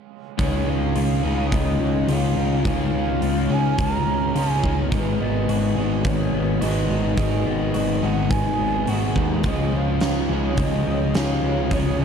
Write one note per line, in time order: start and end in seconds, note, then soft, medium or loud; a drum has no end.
0.38 0.66 C#2 medium
0.38 1.26 C#3 medium
0.38 1.51 D#3 medium
0.38 1.25 G#3 medium
0.38 1.25 C#4 medium
0.38 1.24 F4 medium
0.38 4.89 F4 medium
0.38 1.23 G#4 medium
0.38 4.89 C#5 medium
0.38 0.71 C#5 medium
0.38 12.05 G#5 medium
0.38 2.65 D#6 medium
0.38 kick loud
0.38 open hi-hat soft
0.67 0.94 C#2 medium
0.67 1.80 G#3 medium
0.67 1.55 F5 medium
0.95 1.22 C#2 medium
0.95 1.52 C#3 medium
0.95 1.25 G#3 medium
0.95 1.23 C#4 medium
0.95 2.07 F4 medium
0.95 open hi-hat soft
1.23 1.51 C#2 medium
1.23 2.06 C#3 medium
1.23 2.08 G#3 medium
1.23 2.08 C#4 medium
1.23 2.37 D#4 medium
1.23 2.07 F4 medium
1.23 2.10 G#4 medium
1.52 1.79 C#2 medium
1.52 2.08 C#3 medium
1.52 2.65 D#3 medium
1.52 2.10 G#3 medium
1.52 2.10 C#4 medium
1.52 2.15 D#5 medium
1.52 kick loud
1.52 open hi-hat soft
1.79 2.07 C#2 medium
1.79 2.94 G#3 medium
2.08 2.35 C#2 medium
2.08 2.63 C#3 medium
2.08 2.65 G#3 medium
2.08 2.64 C#4 medium
2.08 3.21 F4 medium
2.08 2.64 F4 medium
2.08 2.67 G#4 medium
2.08 open hi-hat soft
2.13 2.66 F5 medium
2.36 2.64 C#2 medium
2.36 3.50 D#4 medium
2.65 2.92 C#2 medium
2.65 3.48 C#3 medium
2.65 3.77 D#3 medium
2.65 3.51 G#3 medium
2.65 3.49 C#4 medium
2.65 3.48 F4 medium
2.65 3.49 G#4 medium
2.65 3.54 F5 medium
2.65 4.90 F6 medium
2.65 kick loud
2.65 open hi-hat soft
2.93 3.20 C#2 medium
2.93 4.06 G#3 medium
3.22 3.49 C#2 medium
3.22 3.78 C#3 medium
3.22 3.54 G#3 medium
3.22 3.50 C#4 medium
3.22 4.35 F4 medium
3.22 open hi-hat soft
3.49 3.77 C#2 medium
3.49 4.33 C#3 medium
3.49 4.35 G#3 medium
3.49 4.34 C#4 medium
3.49 4.63 D#4 medium
3.49 4.33 F4 medium
3.49 4.37 G#4 medium
3.49 3.81 G#5 loud
3.78 4.06 C#2 medium
3.78 4.33 C#3 medium
3.78 4.92 D#3 medium
3.78 4.35 G#3 medium
3.78 4.35 C#4 medium
3.78 4.39 A#5 medium
3.78 kick loud
3.78 open hi-hat soft
4.06 4.34 C#2 medium
4.06 5.21 G#3 medium
4.35 4.62 C#2 medium
4.35 4.90 C#3 medium
4.35 4.92 G#3 medium
4.35 4.91 C#4 medium
4.35 4.92 F4 medium
4.35 4.91 F4 medium
4.35 4.93 G#4 medium
4.35 4.79 G#5 loud
4.35 open hi-hat soft
4.64 4.91 C#2 medium
4.64 5.77 D#4 medium
4.64 kick medium
4.90 5.19 G#1 medium
4.90 5.78 G#2 medium
4.90 5.75 D#3 medium
4.90 6.04 D#3 medium
4.90 5.77 G#3 medium
4.90 5.77 B3 medium
4.90 5.77 D#4 medium
4.90 9.40 F#4 medium
4.90 5.76 G#4 medium
4.90 9.40 B4 medium
4.90 5.22 B4 medium
4.90 12.05 D#6 medium
4.90 kick loud
4.90 open hi-hat soft
5.21 5.47 G#1 medium
5.21 6.33 B3 medium
5.21 5.78 D#5 medium
5.47 5.75 G#1 medium
5.47 6.05 G#2 medium
5.47 5.78 D#3 medium
5.47 5.76 G#3 medium
5.47 6.60 F#4 medium
5.47 open hi-hat soft
5.76 6.04 G#1 medium
5.76 6.60 G#2 medium
5.76 6.60 D#3 medium
5.76 6.62 G#3 medium
5.76 6.60 B3 medium
5.76 6.63 D#4 medium
5.76 6.90 D#4 medium
5.76 6.63 G#4 medium
6.04 6.32 G#1 medium
6.04 6.60 G#2 medium
6.04 7.16 D#3 medium
6.04 6.62 D#3 medium
6.04 6.63 G#3 medium
6.04 6.63 C#5 medium
6.04 kick loud
6.04 open hi-hat soft
6.32 6.60 G#1 medium
6.32 7.44 B3 medium
6.61 6.88 G#1 medium
6.61 7.16 G#2 medium
6.61 7.17 D#3 medium
6.61 7.19 G#3 medium
6.61 7.17 B3 medium
6.61 7.19 D#4 medium
6.61 7.73 F#4 medium
6.61 7.20 G#4 medium
6.61 7.17 D#5 medium
6.61 open hi-hat medium
6.90 7.17 G#1 medium
6.90 8.02 D#4 medium
7.17 7.44 G#1 medium
7.17 8.01 G#2 medium
7.17 8.29 D#3 medium
7.17 8.02 D#3 medium
7.17 8.03 G#3 medium
7.17 8.02 B3 medium
7.17 8.03 D#4 medium
7.17 8.02 G#4 medium
7.17 8.05 D#5 medium
7.17 kick loud
7.17 open hi-hat soft
7.46 7.73 G#1 medium
7.46 8.58 B3 medium
7.74 8.02 G#1 medium
7.74 8.29 G#2 medium
7.74 8.03 D#3 medium
7.74 8.02 G#3 medium
7.74 8.87 F#4 medium
7.74 open hi-hat soft
8.02 8.30 G#1 medium
8.02 8.87 G#2 medium
8.02 8.87 D#3 medium
8.02 8.89 G#3 medium
8.02 8.86 B3 medium
8.02 9.15 D#4 medium
8.02 8.90 D#4 medium
8.02 8.90 G#4 medium
8.02 8.32 F#5 medium
8.30 8.58 G#1 medium
8.30 8.85 G#2 medium
8.30 9.44 D#3 medium
8.30 8.86 D#3 medium
8.30 8.88 G#3 medium
8.30 8.91 G#5 loud
8.30 kick loud
8.30 open hi-hat soft
8.59 8.86 G#1 medium
8.59 9.44 B3 medium
8.87 9.14 G#1 medium
8.87 9.43 G#2 medium
8.87 9.43 D#3 medium
8.87 9.44 G#3 medium
8.87 9.44 B3 medium
8.87 9.45 D#4 medium
8.87 9.44 F#4 medium
8.87 9.46 G#4 medium
8.87 9.31 F#5 medium
8.87 open hi-hat soft
9.15 9.43 D#2 medium
9.15 9.47 D#4 medium
9.15 kick medium
9.44 9.71 C#2 medium
9.44 10.31 C#3 medium
9.44 9.72 F3 medium
9.44 10.30 G#3 medium
9.44 10.30 C#4 medium
9.44 12.05 F4 medium
9.44 10.29 F4 medium
9.44 10.28 G#4 medium
9.44 12.05 C#5 medium
9.44 9.78 D#5 medium
9.44 kick loud
9.44 open hi-hat soft
9.72 9.99 C#2 medium
9.72 10.57 F3 medium
9.77 10.33 F5 medium
10.00 10.28 C#2 medium
10.00 10.57 C#3 medium
10.00 10.31 G#3 medium
10.00 10.28 C#4 medium
10.00 11.14 D#4 medium
10.00 snare medium
10.00 open hi-hat soft
10.29 10.56 C#2 medium
10.29 11.13 C#3 medium
10.29 11.43 G#3 medium
10.29 11.14 G#3 medium
10.29 11.13 C#4 medium
10.29 11.12 F4 medium
10.29 11.16 G#4 medium
10.57 10.84 C#2 medium
10.57 11.13 C#3 medium
10.57 10.85 F3 medium
10.57 11.15 G#3 medium
10.57 11.15 C#4 medium
10.57 11.17 D#5 medium
10.57 kick loud
10.57 open hi-hat soft
10.86 11.13 C#2 medium
10.86 11.70 F3 medium
11.14 11.41 C#2 medium
11.14 11.68 C#3 medium
11.14 11.70 G#3 medium
11.14 11.70 C#4 medium
11.14 12.05 D#4 medium
11.14 11.70 F4 medium
11.14 11.72 G#4 medium
11.14 11.75 F5 medium
11.14 snare loud
11.14 open hi-hat soft
11.43 11.69 C#2 medium
11.43 12.05 G#3 medium
11.69 11.98 C#2 medium
11.69 12.05 C#3 medium
11.69 11.98 F3 medium
11.69 12.05 G#3 medium
11.69 12.05 C#4 medium
11.69 12.05 F4 medium
11.69 12.05 G#4 medium
11.69 kick loud
11.69 open hi-hat soft
11.73 12.03 C#5 medium
11.99 12.05 C#2 medium
11.99 12.05 F3 medium